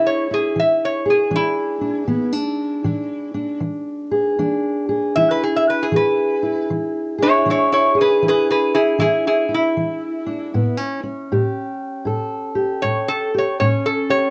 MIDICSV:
0, 0, Header, 1, 3, 480
1, 0, Start_track
1, 0, Tempo, 766284
1, 843, Time_signature, 4, 2, 24, 8
1, 8959, End_track
2, 0, Start_track
2, 0, Title_t, "Resonator guitar played with a steel bar"
2, 0, Program_c, 0, 25
2, 41, Note_on_c, 0, 73, 75
2, 198, Note_off_c, 0, 73, 0
2, 211, Note_on_c, 0, 68, 70
2, 363, Note_off_c, 0, 68, 0
2, 373, Note_on_c, 0, 76, 85
2, 523, Note_off_c, 0, 76, 0
2, 532, Note_on_c, 0, 73, 80
2, 683, Note_off_c, 0, 73, 0
2, 689, Note_on_c, 0, 68, 71
2, 841, Note_off_c, 0, 68, 0
2, 850, Note_on_c, 0, 64, 88
2, 2259, Note_off_c, 0, 64, 0
2, 3230, Note_on_c, 0, 76, 94
2, 3326, Note_on_c, 0, 71, 83
2, 3333, Note_off_c, 0, 76, 0
2, 3391, Note_off_c, 0, 71, 0
2, 3405, Note_on_c, 0, 68, 74
2, 3486, Note_on_c, 0, 76, 83
2, 3530, Note_off_c, 0, 76, 0
2, 3542, Note_off_c, 0, 68, 0
2, 3569, Note_on_c, 0, 71, 80
2, 3650, Note_on_c, 0, 68, 78
2, 3663, Note_off_c, 0, 71, 0
2, 3713, Note_off_c, 0, 68, 0
2, 3734, Note_on_c, 0, 71, 82
2, 4194, Note_off_c, 0, 71, 0
2, 4525, Note_on_c, 0, 64, 79
2, 4528, Note_on_c, 0, 73, 95
2, 4680, Note_off_c, 0, 73, 0
2, 4684, Note_off_c, 0, 64, 0
2, 4699, Note_on_c, 0, 64, 71
2, 4704, Note_on_c, 0, 73, 85
2, 4830, Note_off_c, 0, 64, 0
2, 4837, Note_off_c, 0, 73, 0
2, 4838, Note_on_c, 0, 64, 68
2, 4845, Note_on_c, 0, 73, 81
2, 4989, Note_off_c, 0, 64, 0
2, 4999, Note_off_c, 0, 73, 0
2, 5016, Note_on_c, 0, 68, 70
2, 5020, Note_on_c, 0, 71, 72
2, 5158, Note_off_c, 0, 68, 0
2, 5167, Note_off_c, 0, 71, 0
2, 5188, Note_on_c, 0, 68, 74
2, 5192, Note_on_c, 0, 71, 82
2, 5321, Note_off_c, 0, 68, 0
2, 5323, Note_off_c, 0, 71, 0
2, 5327, Note_on_c, 0, 68, 66
2, 5333, Note_on_c, 0, 71, 80
2, 5473, Note_off_c, 0, 68, 0
2, 5478, Note_on_c, 0, 64, 76
2, 5482, Note_off_c, 0, 71, 0
2, 5482, Note_on_c, 0, 68, 80
2, 5628, Note_off_c, 0, 64, 0
2, 5636, Note_on_c, 0, 64, 74
2, 5637, Note_off_c, 0, 68, 0
2, 5646, Note_on_c, 0, 68, 89
2, 5788, Note_off_c, 0, 64, 0
2, 5800, Note_off_c, 0, 68, 0
2, 5808, Note_on_c, 0, 64, 64
2, 5810, Note_on_c, 0, 68, 72
2, 5954, Note_off_c, 0, 64, 0
2, 5961, Note_off_c, 0, 68, 0
2, 5978, Note_on_c, 0, 64, 89
2, 6906, Note_off_c, 0, 64, 0
2, 8031, Note_on_c, 0, 73, 92
2, 8191, Note_off_c, 0, 73, 0
2, 8195, Note_on_c, 0, 69, 94
2, 8353, Note_off_c, 0, 69, 0
2, 8384, Note_on_c, 0, 73, 71
2, 8511, Note_off_c, 0, 73, 0
2, 8518, Note_on_c, 0, 73, 87
2, 8674, Note_off_c, 0, 73, 0
2, 8681, Note_on_c, 0, 69, 86
2, 8835, Note_off_c, 0, 69, 0
2, 8835, Note_on_c, 0, 73, 88
2, 8959, Note_off_c, 0, 73, 0
2, 8959, End_track
3, 0, Start_track
3, 0, Title_t, "Steel-string acoustic guitar"
3, 0, Program_c, 1, 25
3, 0, Note_on_c, 1, 52, 73
3, 0, Note_on_c, 1, 62, 59
3, 0, Note_on_c, 1, 64, 65
3, 0, Note_on_c, 1, 68, 61
3, 191, Note_off_c, 1, 64, 0
3, 193, Note_on_c, 1, 64, 52
3, 325, Note_off_c, 1, 52, 0
3, 349, Note_on_c, 1, 52, 65
3, 659, Note_off_c, 1, 68, 0
3, 661, Note_on_c, 1, 68, 62
3, 800, Note_off_c, 1, 52, 0
3, 818, Note_off_c, 1, 62, 0
3, 818, Note_on_c, 1, 52, 72
3, 820, Note_on_c, 1, 62, 67
3, 838, Note_off_c, 1, 64, 0
3, 1133, Note_off_c, 1, 62, 0
3, 1135, Note_on_c, 1, 62, 52
3, 1274, Note_off_c, 1, 52, 0
3, 1298, Note_off_c, 1, 62, 0
3, 1300, Note_on_c, 1, 52, 75
3, 1300, Note_on_c, 1, 59, 59
3, 1456, Note_off_c, 1, 59, 0
3, 1456, Note_on_c, 1, 62, 54
3, 1755, Note_off_c, 1, 52, 0
3, 1780, Note_off_c, 1, 62, 0
3, 1781, Note_on_c, 1, 52, 78
3, 1787, Note_on_c, 1, 62, 62
3, 2091, Note_off_c, 1, 62, 0
3, 2094, Note_on_c, 1, 62, 57
3, 2235, Note_off_c, 1, 52, 0
3, 2257, Note_on_c, 1, 52, 67
3, 2575, Note_off_c, 1, 68, 0
3, 2577, Note_on_c, 1, 68, 67
3, 2713, Note_off_c, 1, 52, 0
3, 2748, Note_off_c, 1, 62, 0
3, 2748, Note_on_c, 1, 52, 72
3, 2750, Note_on_c, 1, 62, 62
3, 3060, Note_off_c, 1, 68, 0
3, 3062, Note_on_c, 1, 68, 63
3, 3199, Note_off_c, 1, 52, 0
3, 3237, Note_on_c, 1, 52, 75
3, 3240, Note_on_c, 1, 64, 59
3, 3683, Note_off_c, 1, 52, 0
3, 3706, Note_on_c, 1, 52, 76
3, 3716, Note_off_c, 1, 68, 0
3, 3719, Note_on_c, 1, 68, 66
3, 4024, Note_off_c, 1, 64, 0
3, 4026, Note_on_c, 1, 64, 54
3, 4159, Note_off_c, 1, 52, 0
3, 4198, Note_on_c, 1, 52, 71
3, 4492, Note_off_c, 1, 68, 0
3, 4500, Note_on_c, 1, 68, 65
3, 4645, Note_off_c, 1, 52, 0
3, 4655, Note_off_c, 1, 62, 0
3, 4670, Note_on_c, 1, 52, 74
3, 4675, Note_on_c, 1, 62, 59
3, 4694, Note_off_c, 1, 64, 0
3, 4970, Note_off_c, 1, 68, 0
3, 4978, Note_on_c, 1, 68, 57
3, 5121, Note_off_c, 1, 52, 0
3, 5151, Note_on_c, 1, 52, 71
3, 5154, Note_on_c, 1, 64, 59
3, 5601, Note_off_c, 1, 52, 0
3, 5628, Note_on_c, 1, 52, 71
3, 5632, Note_off_c, 1, 64, 0
3, 5634, Note_on_c, 1, 64, 59
3, 5940, Note_off_c, 1, 64, 0
3, 5943, Note_on_c, 1, 64, 53
3, 6080, Note_off_c, 1, 52, 0
3, 6118, Note_on_c, 1, 52, 64
3, 6423, Note_off_c, 1, 62, 0
3, 6430, Note_on_c, 1, 62, 58
3, 6565, Note_off_c, 1, 52, 0
3, 6583, Note_off_c, 1, 62, 0
3, 6599, Note_off_c, 1, 68, 0
3, 6603, Note_on_c, 1, 45, 75
3, 6605, Note_on_c, 1, 59, 65
3, 6748, Note_off_c, 1, 59, 0
3, 6748, Note_on_c, 1, 61, 52
3, 6903, Note_off_c, 1, 61, 0
3, 6911, Note_on_c, 1, 61, 57
3, 7048, Note_off_c, 1, 45, 0
3, 7089, Note_on_c, 1, 45, 77
3, 7090, Note_off_c, 1, 64, 0
3, 7093, Note_on_c, 1, 67, 59
3, 7530, Note_off_c, 1, 45, 0
3, 7549, Note_on_c, 1, 45, 77
3, 7559, Note_on_c, 1, 69, 66
3, 7860, Note_off_c, 1, 67, 0
3, 7863, Note_on_c, 1, 67, 57
3, 8000, Note_off_c, 1, 45, 0
3, 8040, Note_on_c, 1, 45, 71
3, 8356, Note_off_c, 1, 67, 0
3, 8359, Note_on_c, 1, 67, 61
3, 8485, Note_off_c, 1, 45, 0
3, 8522, Note_on_c, 1, 45, 77
3, 8526, Note_off_c, 1, 61, 0
3, 8528, Note_on_c, 1, 61, 62
3, 8541, Note_off_c, 1, 67, 0
3, 8829, Note_on_c, 1, 67, 58
3, 8847, Note_off_c, 1, 69, 0
3, 8959, Note_off_c, 1, 45, 0
3, 8959, Note_off_c, 1, 61, 0
3, 8959, Note_off_c, 1, 67, 0
3, 8959, End_track
0, 0, End_of_file